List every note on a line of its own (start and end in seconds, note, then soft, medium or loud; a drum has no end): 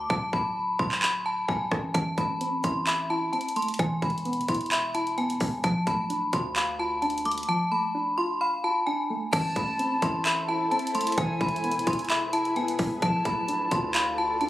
0.10 0.32 D1 loud
0.10 0.31 A5 loud
0.10 kick loud
0.33 0.77 D1 loud
0.33 0.77 B5 medium
0.33 kick loud
0.79 1.46 D1 loud
0.79 1.01 C6 medium
0.79 kick medium
0.92 clap medium
1.02 1.24 B5 medium
1.02 clap loud
1.26 1.47 A5 medium
1.48 1.71 D1 loud
1.48 1.70 G#5 medium
1.48 kick medium
1.72 1.94 A1 loud
1.72 kick loud
1.72 cross-stick loud
1.94 2.17 A1 loud
1.94 3.10 E3 loud
1.94 2.16 A5 loud
1.94 kick loud
1.94 closed hi-hat medium
2.18 2.62 A1 loud
2.18 3.33 A3 medium
2.18 2.61 B5 medium
2.18 kick loud
2.18 closed hi-hat medium
2.41 3.32 C4 medium
2.41 closed hi-hat medium
2.64 3.30 A1 loud
2.64 3.09 E4 medium
2.64 2.85 C6 medium
2.64 kick medium
2.64 closed hi-hat medium
2.87 3.79 E5 loud
2.87 3.09 B5 medium
2.87 clap loud
2.87 closed hi-hat medium
3.10 3.79 E4 loud
3.10 3.31 A5 medium
3.33 3.79 C4 medium
3.33 3.54 A5 medium
3.33 closed hi-hat soft
3.41 closed hi-hat medium
3.49 closed hi-hat medium
3.56 3.79 A3 medium
3.56 3.78 C6 medium
3.56 closed hi-hat medium
3.62 closed hi-hat medium
3.68 closed hi-hat medium
3.74 closed hi-hat medium
3.79 4.01 E1 loud
3.79 4.95 E3 loud
3.79 4.01 G#5 medium
3.79 kick loud
3.79 closed hi-hat medium
4.02 4.39 E1 loud
4.02 5.18 G#3 medium
4.02 4.46 B5 medium
4.02 kick loud
4.02 closed hi-hat soft
4.10 closed hi-hat soft
4.18 closed hi-hat medium
4.25 5.16 B3 medium
4.25 closed hi-hat medium
4.33 closed hi-hat medium
4.38 4.48 G#1 loud
4.38 closed hi-hat medium
4.48 5.37 E1 loud
4.48 4.93 E4 medium
4.48 4.70 C6 medium
4.48 kick medium
4.48 closed hi-hat medium
4.55 closed hi-hat medium
4.61 closed hi-hat medium
4.66 closed hi-hat soft
4.71 5.64 E5 loud
4.71 4.93 B5 medium
4.71 clap loud
4.71 closed hi-hat medium
4.95 5.64 E4 medium
4.95 5.16 A5 medium
4.95 closed hi-hat medium
5.07 closed hi-hat soft
5.18 5.64 B3 medium
5.18 5.39 G#5 medium
5.18 closed hi-hat soft
5.30 closed hi-hat medium
5.40 5.63 E1 loud
5.40 5.64 G#3 medium
5.40 kick loud
5.40 open hi-hat medium
5.64 5.86 D1 loud
5.64 6.79 F3 medium
5.64 5.85 A5 loud
5.64 kick loud
5.64 closed hi-hat medium
5.87 6.31 D1 loud
5.87 7.02 A3 medium
5.87 6.30 B5 medium
5.87 kick loud
5.87 closed hi-hat medium
6.10 7.01 D4 medium
6.10 closed hi-hat medium
6.33 7.44 D2 loud
6.33 6.78 F4 medium
6.33 6.54 C6 medium
6.33 kick medium
6.33 closed hi-hat medium
6.56 7.72 F5 loud
6.56 6.77 B5 medium
6.56 clap loud
6.56 closed hi-hat medium
6.79 7.95 F4 medium
6.79 7.01 A5 medium
7.02 7.93 D4 medium
7.02 7.24 A5 medium
7.02 closed hi-hat soft
7.10 closed hi-hat medium
7.18 closed hi-hat medium
7.25 7.70 A3 medium
7.25 7.47 D6 medium
7.25 closed hi-hat medium
7.32 closed hi-hat medium
7.38 closed hi-hat medium
7.43 closed hi-hat medium
7.49 8.64 F3 loud
7.49 7.70 A5 loud
7.72 8.87 A3 medium
7.72 8.15 B5 medium
7.95 8.86 D4 loud
8.18 8.63 F4 medium
8.18 8.39 C6 medium
8.41 9.33 F5 loud
8.41 8.62 B5 medium
8.64 9.33 F4 medium
8.64 8.85 A5 medium
8.87 9.33 D4 medium
8.87 9.08 G#5 medium
9.10 9.33 A3 medium
9.33 9.55 A1 loud
9.33 10.49 E3 loud
9.33 12.99 E4 medium
9.33 11.16 A4 medium
9.33 11.16 C5 medium
9.33 9.54 A5 loud
9.33 10.21 A5 loud
9.33 11.16 A5 medium
9.33 kick loud
9.33 closed hi-hat medium
9.33 crash loud
9.56 10.00 A1 loud
9.56 10.72 A3 medium
9.56 10.00 B5 medium
9.56 kick loud
9.56 closed hi-hat medium
9.79 10.70 C4 medium
9.79 closed hi-hat medium
10.02 10.69 A1 loud
10.02 10.47 E4 medium
10.02 10.24 C6 medium
10.02 kick loud
10.02 closed hi-hat medium
10.25 11.18 E5 loud
10.25 10.47 B5 medium
10.25 clap loud
10.25 closed hi-hat medium
10.49 11.18 E4 medium
10.49 10.70 A5 medium
10.71 11.18 C4 medium
10.71 10.93 A5 medium
10.71 closed hi-hat soft
10.79 closed hi-hat medium
10.87 closed hi-hat medium
10.95 11.18 A3 medium
10.95 11.16 C6 medium
10.95 closed hi-hat medium
11.01 closed hi-hat medium
11.07 closed hi-hat medium
11.12 closed hi-hat medium
11.18 11.40 E1 loud
11.18 12.33 E3 loud
11.18 13.00 G#4 medium
11.18 13.00 B4 medium
11.18 12.06 G#5 loud
11.18 13.00 G#5 medium
11.18 11.39 G#5 loud
11.18 kick loud
11.18 closed hi-hat medium
11.41 11.78 E1 loud
11.41 12.56 G#3 medium
11.41 11.84 B5 medium
11.41 kick loud
11.41 closed hi-hat soft
11.49 closed hi-hat soft
11.56 closed hi-hat medium
11.64 12.55 B3 medium
11.64 closed hi-hat medium
11.71 closed hi-hat medium
11.76 11.86 G#1 medium
11.76 closed hi-hat medium
11.87 12.76 E1 loud
11.87 12.32 E4 medium
11.87 12.09 C6 medium
11.87 kick medium
11.87 closed hi-hat medium
11.93 closed hi-hat medium
11.99 closed hi-hat medium
12.05 closed hi-hat soft
12.10 13.02 E5 loud
12.10 12.31 B5 medium
12.10 clap loud
12.10 closed hi-hat medium
12.33 13.02 E4 medium
12.33 12.55 A5 medium
12.33 closed hi-hat medium
12.45 closed hi-hat medium
12.56 13.02 B3 medium
12.56 12.78 G#5 medium
12.56 closed hi-hat soft
12.68 closed hi-hat medium
12.79 13.01 E1 loud
12.79 13.02 G#3 medium
12.79 kick loud
12.79 open hi-hat medium
13.02 13.24 D1 loud
13.02 14.18 F3 medium
13.02 14.49 F4 medium
13.02 14.49 A4 medium
13.02 14.49 D5 medium
13.02 14.49 A5 medium
13.02 13.24 A5 loud
13.02 13.91 A5 loud
13.02 kick loud
13.02 closed hi-hat medium
13.25 13.70 D1 loud
13.25 14.41 A3 medium
13.25 13.69 B5 medium
13.25 kick loud
13.25 closed hi-hat medium
13.48 14.40 D4 medium
13.48 closed hi-hat medium
13.71 14.49 D2 loud
13.71 14.17 F4 medium
13.71 13.93 C6 medium
13.71 kick medium
13.71 closed hi-hat medium
13.95 14.49 F5 loud
13.95 14.16 B5 medium
13.95 clap loud
13.95 closed hi-hat medium
14.18 14.49 F4 medium
14.18 14.39 A5 medium
14.41 14.49 D4 medium
14.41 14.49 A5 medium
14.41 closed hi-hat soft